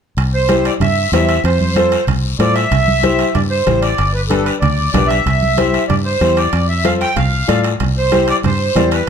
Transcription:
0.17 0.68 C2 medium
0.17 high timbale medium
0.17 long guiro medium
0.34 0.66 C5 medium
0.49 0.71 E4 medium
0.49 0.71 G4 medium
0.49 0.72 C5 medium
0.49 high conga medium
0.49 high timbale medium
0.49 short guiro medium
0.65 0.72 D5 medium
0.65 high timbale medium
0.65 short guiro medium
0.80 1.06 G2 medium
0.80 1.11 E5 medium
0.80 low conga medium
0.80 high timbale medium
0.80 long guiro medium
1.12 1.38 E2 medium
1.12 1.35 E4 medium
1.12 1.35 G4 medium
1.12 1.35 C5 medium
1.12 1.42 E5 medium
1.12 high conga medium
1.12 high timbale medium
1.12 low timbale medium
1.12 short guiro medium
1.29 high timbale medium
1.29 short guiro medium
1.44 1.95 F2 loud
1.44 2.04 C5 medium
1.44 high timbale medium
1.44 long guiro medium
1.60 high conga medium
1.76 1.99 F4 medium
1.76 1.99 A4 medium
1.76 1.99 C5 medium
1.76 high conga medium
1.76 high timbale medium
1.76 short guiro medium
1.92 high timbale medium
1.92 short guiro medium
2.07 2.33 C2 medium
2.07 low conga medium
2.07 high timbale medium
2.07 long guiro medium
2.39 2.65 A2 medium
2.39 2.62 F4 medium
2.39 2.62 A4 medium
2.39 2.62 C5 medium
2.39 2.54 D5 medium
2.39 high conga medium
2.39 high timbale medium
2.39 short guiro medium
2.54 3.37 E5 loud
2.54 high timbale medium
2.54 short guiro medium
2.71 3.22 C2 loud
2.71 low conga medium
2.71 high timbale medium
2.71 long guiro medium
2.88 high conga medium
3.03 3.25 E4 medium
3.03 3.26 G4 medium
3.03 3.26 C5 loud
3.03 high conga medium
3.03 high timbale medium
3.03 short guiro medium
3.19 high timbale medium
3.19 short guiro medium
3.34 3.61 G2 medium
3.34 3.41 D5 medium
3.34 low conga medium
3.34 high timbale medium
3.34 long guiro medium
3.50 3.80 C5 medium
3.66 3.92 A1 medium
3.66 3.89 E4 medium
3.66 3.89 G4 medium
3.66 3.89 C5 medium
3.66 high conga medium
3.66 low conga medium
3.66 high timbale medium
3.66 short guiro medium
3.81 4.12 D5 medium
3.81 high timbale medium
3.81 short guiro medium
3.98 4.50 G1 medium
3.98 high timbale medium
3.98 long guiro medium
4.14 4.21 B4 medium
4.29 4.53 D4 medium
4.29 4.53 G4 medium
4.29 4.44 A4 medium
4.29 4.53 B4 medium
4.29 high conga medium
4.29 high timbale medium
4.29 short guiro medium
4.44 4.52 B4 medium
4.44 high timbale medium
4.44 short guiro medium
4.60 4.88 D2 medium
4.60 4.90 D5 medium
4.60 low conga medium
4.60 high timbale medium
4.60 long guiro medium
4.92 5.19 B1 medium
4.92 5.16 D4 medium
4.92 5.16 G4 medium
4.92 5.17 B4 medium
4.92 5.08 D5 medium
4.92 high conga medium
4.92 low conga medium
4.92 high timbale medium
4.92 low timbale medium
4.92 short guiro medium
5.07 5.84 E5 medium
5.07 high timbale medium
5.07 short guiro medium
5.26 5.77 C2 medium
5.26 low conga medium
5.26 high timbale medium
5.26 long guiro medium
5.43 high conga medium
5.57 5.80 E4 medium
5.57 5.80 G4 medium
5.57 5.80 C5 loud
5.57 high conga medium
5.57 high timbale medium
5.57 short guiro medium
5.74 high timbale medium
5.74 short guiro medium
5.88 6.15 G2 medium
5.88 5.95 D5 medium
5.88 low conga medium
5.88 high timbale medium
5.88 long guiro medium
6.05 6.38 C5 loud
6.21 6.47 E2 medium
6.21 6.43 E4 medium
6.21 6.44 G4 medium
6.21 6.44 C5 medium
6.21 high conga medium
6.21 high timbale medium
6.21 short guiro medium
6.36 6.66 D5 medium
6.36 high timbale medium
6.36 short guiro medium
6.53 7.04 F2 medium
6.53 high timbale medium
6.53 long guiro medium
6.69 6.85 E5 medium
6.84 7.07 F4 medium
6.84 7.07 A4 medium
6.84 7.07 C5 medium
6.84 6.92 F5 loud
6.84 high conga medium
6.84 high timbale medium
6.84 short guiro medium
7.01 7.16 G5 loud
7.01 high timbale medium
7.01 short guiro medium
7.16 7.42 C2 medium
7.16 7.61 F5 medium
7.16 low conga medium
7.16 high timbale medium
7.16 long guiro medium
7.48 7.74 A2 medium
7.48 7.70 F4 medium
7.48 7.71 A4 medium
7.48 7.71 D5 medium
7.48 high conga medium
7.48 high timbale medium
7.48 short guiro medium
7.64 high timbale medium
7.64 short guiro medium
7.80 8.31 C2 medium
7.80 low conga medium
7.80 high timbale medium
7.80 long guiro medium
7.98 8.27 C5 medium
8.12 8.34 E4 medium
8.12 8.34 G4 medium
8.12 8.35 C5 medium
8.12 high conga medium
8.12 high timbale medium
8.12 short guiro medium
8.28 8.36 D5 loud
8.28 high timbale medium
8.28 short guiro medium
8.43 8.69 G2 medium
8.43 8.89 C5 medium
8.43 low conga medium
8.43 high timbale medium
8.43 long guiro medium
8.75 9.01 E2 medium
8.75 8.98 E4 medium
8.75 8.98 G4 medium
8.75 8.98 D5 medium
8.75 high conga medium
8.75 low conga medium
8.75 high timbale medium
8.75 low timbale medium
8.75 short guiro medium
8.91 9.09 B4 medium
8.91 high timbale medium
8.91 short guiro medium

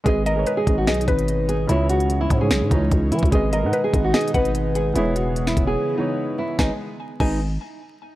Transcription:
0.04 0.45 G#1 loud
0.04 1.67 B2 medium
0.04 1.67 D#3 medium
0.04 0.30 G#3 loud
0.04 6.55 G#3 medium
0.04 1.67 D#4 medium
0.04 0.31 G#4 medium
0.04 0.24 G#4 loud
0.04 0.32 B4 medium
0.04 kick loud
0.04 closed hi-hat medium
0.08 0.33 D#5 loud
0.26 0.55 A#4 medium
0.26 0.46 D#5 loud
0.26 closed hi-hat medium
0.35 0.61 G#3 medium
0.35 0.62 G#4 medium
0.35 0.62 B4 medium
0.39 0.63 C#5 medium
0.46 0.85 B4 medium
0.46 closed hi-hat medium
0.57 0.75 G#4 medium
0.65 0.89 G#1 loud
0.65 1.34 G#3 medium
0.65 1.35 G#4 medium
0.65 1.35 B4 medium
0.65 kick loud
0.65 closed hi-hat medium
0.69 1.36 D#5 medium
0.78 0.86 F#4 medium
0.87 1.07 B1 loud
0.87 1.06 G#4 medium
0.87 1.07 D#5 medium
0.87 snare loud
0.87 closed hi-hat soft
0.94 closed hi-hat medium
1.01 closed hi-hat medium
1.08 1.67 G#1 loud
1.08 1.46 B4 medium
1.08 1.27 B4 medium
1.08 kick medium
1.08 closed hi-hat medium
1.19 closed hi-hat medium
1.28 closed hi-hat medium
1.49 1.67 G#4 medium
1.49 closed hi-hat medium
1.67 2.28 C#2 loud
1.67 2.27 C#3 loud
1.67 3.31 C#3 medium
1.67 3.31 E3 medium
1.67 2.28 G#3 medium
1.67 3.31 C#4 medium
1.67 1.87 E4 loud
1.67 2.29 E4 medium
1.67 closed hi-hat medium
1.72 2.29 C#5 loud
1.89 2.19 F#4 medium
1.89 closed hi-hat medium
2.00 closed hi-hat medium
2.10 closed hi-hat medium
2.21 2.39 E4 medium
2.30 2.52 G#2 loud
2.30 kick loud
2.30 closed hi-hat medium
2.39 2.65 C#3 medium
2.39 2.66 G#3 medium
2.39 2.66 E4 medium
2.39 2.69 G#4 medium
2.43 2.67 C#5 medium
2.51 2.63 B1 loud
2.51 snare loud
2.51 closed hi-hat medium
2.62 2.71 G#2 loud
2.70 2.91 C#2 loud
2.70 3.22 C#3 medium
2.70 3.23 E3 medium
2.70 3.22 G#3 medium
2.70 3.09 D#4 medium
2.70 kick medium
2.70 closed hi-hat medium
2.74 3.24 C#5 medium
2.91 3.13 C#2 loud
2.91 kick medium
2.91 closed hi-hat medium
3.12 3.22 E3 medium
3.12 3.30 E4 medium
3.12 closed hi-hat medium
3.19 closed hi-hat medium
3.23 3.32 C#2 loud
3.23 kick loud
3.23 closed hi-hat soft
3.31 3.65 G#1 loud
3.31 4.94 B2 medium
3.31 4.94 D#3 medium
3.31 3.57 G#3 loud
3.31 4.94 D#4 medium
3.31 3.58 G#4 medium
3.31 3.50 G#4 loud
3.31 3.58 B4 medium
3.31 kick loud
3.31 closed hi-hat medium
3.35 3.59 D#5 loud
3.53 3.82 A#4 medium
3.53 3.72 D#5 medium
3.53 closed hi-hat medium
3.62 3.73 G#2 loud
3.62 3.88 G#3 medium
3.62 3.88 G#4 medium
3.62 3.89 B4 medium
3.66 3.90 F#5 medium
3.73 4.12 B4 medium
3.73 closed hi-hat medium
3.84 4.02 G#4 medium
3.91 4.13 G#1 loud
3.91 4.60 G#3 medium
3.91 4.61 G#4 medium
3.91 4.62 B4 medium
3.91 kick loud
3.91 closed hi-hat medium
3.96 4.62 D#5 medium
4.04 4.13 F#4 medium
4.14 4.32 G#4 medium
4.14 4.33 D#5 medium
4.14 snare loud
4.14 closed hi-hat soft
4.21 closed hi-hat medium
4.28 closed hi-hat medium
4.34 4.93 G#1 loud
4.34 4.73 B4 medium
4.34 4.54 F#5 medium
4.34 kick medium
4.34 closed hi-hat medium
4.45 closed hi-hat medium
4.55 closed hi-hat medium
4.75 4.93 G#4 medium
4.75 closed hi-hat medium
4.94 5.54 E1 loud
4.94 6.57 C#3 medium
4.94 5.54 E3 loud
4.94 6.57 E3 medium
4.94 5.54 B3 medium
4.94 6.57 B3 medium
4.94 5.14 E4 loud
4.94 5.55 G#4 medium
4.94 closed hi-hat loud
4.98 5.56 C#5 loud
5.16 5.45 F#4 medium
5.16 closed hi-hat medium
5.36 closed hi-hat medium
5.47 5.65 E4 medium
5.47 snare medium
5.57 5.76 E1 loud
5.57 kick loud
5.57 closed hi-hat medium
5.65 5.91 E3 medium
5.65 5.92 B3 medium
5.65 5.96 G#4 medium
5.65 5.93 G#4 medium
5.69 5.93 C#5 medium
5.96 6.48 E3 medium
5.96 6.48 B3 medium
5.96 6.36 D#4 medium
5.96 6.49 G#4 medium
6.00 6.50 C#5 medium
6.39 6.57 E4 medium
6.59 6.71 G#1 loud
6.59 6.78 D#3 medium
6.59 6.71 G#3 medium
6.59 6.78 G#3 medium
6.59 6.78 B3 medium
6.59 6.71 D#4 medium
6.59 6.71 G#4 medium
6.59 6.78 G#4 medium
6.59 6.71 B4 medium
6.59 6.71 D#5 medium
6.59 6.71 G#5 medium
6.59 kick loud
6.59 snare medium
7.20 7.58 G#1 loud
7.20 7.39 G#3 medium
7.20 7.39 D#4 medium
7.20 7.39 G#4 medium
7.20 7.39 B4 medium
7.20 7.39 D#5 loud
7.20 7.39 G#5 medium
7.20 kick loud
7.20 crash medium

